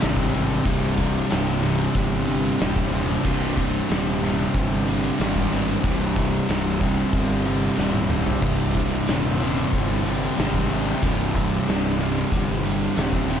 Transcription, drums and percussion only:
0.00 snare loud
0.00 closed hi-hat loud
0.17 kick medium
0.33 closed hi-hat medium
0.50 closed hi-hat medium
0.65 kick loud
0.65 closed hi-hat loud
0.82 closed hi-hat soft
0.98 kick medium
0.98 snare soft
0.98 closed hi-hat medium
1.15 closed hi-hat soft
1.30 snare loud
1.30 closed hi-hat loud
1.63 closed hi-hat medium
1.80 closed hi-hat medium
1.95 kick loud
1.95 closed hi-hat loud
2.27 closed hi-hat medium
2.44 closed hi-hat soft
2.60 snare loud
2.60 closed hi-hat medium
2.76 kick medium
2.93 closed hi-hat medium
3.25 kick loud
3.25 crash loud
3.41 closed hi-hat medium
3.57 kick medium
3.57 closed hi-hat medium
3.74 closed hi-hat soft
3.90 snare loud
3.90 closed hi-hat medium
4.22 closed hi-hat medium
4.38 closed hi-hat medium
4.54 kick loud
4.54 closed hi-hat loud
4.71 closed hi-hat soft
4.87 closed hi-hat medium
5.03 closed hi-hat medium
5.20 snare loud
5.20 closed hi-hat loud
5.36 kick medium
5.52 closed hi-hat medium
5.69 closed hi-hat medium
5.84 kick loud
5.84 closed hi-hat loud
6.01 closed hi-hat soft
6.16 kick medium
6.16 snare soft
6.16 closed hi-hat medium
6.33 closed hi-hat soft
6.49 snare loud
6.49 closed hi-hat loud
6.81 kick medium
6.81 closed hi-hat medium
6.98 closed hi-hat soft
7.13 kick loud
7.13 closed hi-hat loud
7.46 closed hi-hat medium
7.62 closed hi-hat soft
7.79 snare medium
7.93 high tom medium
8.10 mid tom loud
8.26 floor tom loud
8.42 kick loud
8.42 crash loud
8.58 closed hi-hat soft
8.75 kick medium
8.75 snare soft
8.75 closed hi-hat medium
8.91 closed hi-hat soft
9.07 snare loud
9.07 closed hi-hat loud
9.40 closed hi-hat medium
9.57 closed hi-hat soft
9.73 kick loud
9.73 closed hi-hat medium
9.90 closed hi-hat soft
10.06 closed hi-hat medium
10.22 closed hi-hat medium
10.38 snare loud
10.38 closed hi-hat medium
10.54 kick medium
10.71 closed hi-hat medium
10.87 closed hi-hat soft
11.03 kick loud
11.03 closed hi-hat loud
11.20 closed hi-hat medium
11.35 kick medium
11.35 snare soft
11.35 closed hi-hat medium
11.53 closed hi-hat soft
11.68 snare loud
11.68 closed hi-hat loud
12.00 closed hi-hat medium
12.17 closed hi-hat medium
12.32 kick loud
12.32 closed hi-hat loud
12.65 closed hi-hat medium
12.82 closed hi-hat medium
12.97 snare loud
12.97 closed hi-hat loud
13.13 kick medium
13.30 closed hi-hat medium

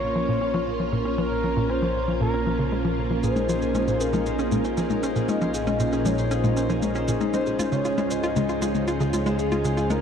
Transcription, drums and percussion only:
3.23 shaker medium
3.36 high tom soft
3.36 shaker soft
3.49 shaker medium
3.62 shaker soft
3.75 high tom soft
3.75 shaker medium
3.88 shaker soft
4.00 shaker medium
4.13 high tom soft
4.13 shaker soft
4.26 shaker medium
4.39 shaker soft
4.52 high tom soft
4.52 shaker medium
4.65 shaker soft
4.77 shaker medium
4.90 high tom soft
4.90 shaker soft
5.03 shaker medium
5.16 shaker soft
5.29 high tom soft
5.29 shaker medium
5.41 shaker soft
5.54 shaker medium
5.67 high tom soft
5.67 shaker soft
5.80 shaker medium
5.92 shaker soft
6.05 high tom soft
6.05 shaker medium
6.18 shaker soft
6.31 shaker medium
6.44 high tom soft
6.44 shaker soft
6.57 shaker medium
6.70 shaker soft
6.82 high tom soft
6.82 shaker medium
6.95 shaker soft
7.08 shaker loud
7.21 high tom soft
7.21 shaker soft
7.34 shaker medium
7.46 shaker soft
7.59 high tom soft
7.59 shaker medium
7.72 shaker soft
7.85 shaker medium
7.98 high tom soft
7.98 shaker soft
8.11 shaker medium
8.23 shaker soft
8.36 high tom soft
8.36 shaker medium
8.49 shaker soft
8.62 shaker loud
8.75 high tom soft
8.75 shaker soft
8.88 shaker medium
9.01 shaker soft
9.13 high tom soft
9.13 shaker medium
9.26 shaker soft
9.39 shaker medium
9.52 high tom soft
9.52 shaker soft
9.65 shaker medium
9.77 shaker soft
9.90 high tom soft
9.90 shaker medium

